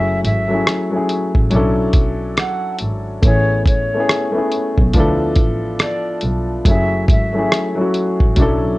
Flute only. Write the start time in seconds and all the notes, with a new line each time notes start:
Already playing: E5
0.24 E5
2.39 F#5
3.24 C#5
3.67 C#5
5.81 D5
6.67 E5
7.10 E5